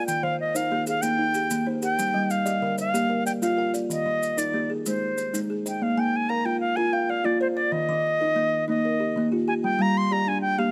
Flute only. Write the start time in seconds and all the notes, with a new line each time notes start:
0.07 G5
0.23 F5
0.40 D#5
0.56 F5
0.89 F5
1.02 G5
1.83 G5
2.31 F5
2.80 F5
3.26 G5
3.42 F5
3.91 D#5
4.38 D5
4.87 C5
5.68 G5
5.83 F5
5.99 G5
6.16 G#5
6.29 A#5
6.45 G5
6.60 F5
6.76 G#5
6.93 G5
7.10 F5
7.25 D5
7.42 C5
7.55 D5
7.72 D#5
8.69 D#5
9.48 G#5
9.64 G5
9.82 A#5
9.98 C6
10.12 A#5
10.28 G#5
10.41 G5
10.59 F5